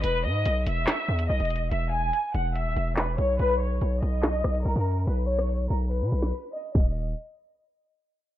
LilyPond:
<<
  \new Staff \with { instrumentName = "Violin section" } { \time 4/4 \key ces \major \tempo 4 = 143 b'8 ees''4 e''4. ees''4 | e''8 gis''4 ges''8 e''4 b'8 des''8 | b'8 cis''4 dis''4. bes'4 | b'8 cis''4 bes'8 b'4. dis''8 |
ees''8 r2. r8 | }
  \new Staff \with { instrumentName = "808-style bass" } { \clef bass \time 4/4 \key ces \major e,,8 gis,8 b,,8 e,,8 r8 e,8 b,,16 e,,8. | e,,4 r8 e,,8. ees,,16 e,,4 b,,8 | b,,4 b,,8 b,,4 b,,8 b,,16 fis,8. | b,,4. b,,8. b,16 b,,8 r4 |
ees,,4 r2. | }
  \new DrumStaff \with { instrumentName = "Drums" } \drummode { \time 4/4 hh4 hh8 hh8 <hc hh sn>8. hh16 r16 hh32 hh32 hh32 hh16. | hh4 hh8 hh8 hh8 hh8 <hc sn>8 hh8 | hh4 hh8 hh8 <hc hh sn>8 ss16 hh16 r16 hh32 hh32 hh32 hh16. | hh8. ss16 hh8 hh8 hh8 hh16 sn16 r4 |
<hho bd>4 r4 r4 r4 | }
>>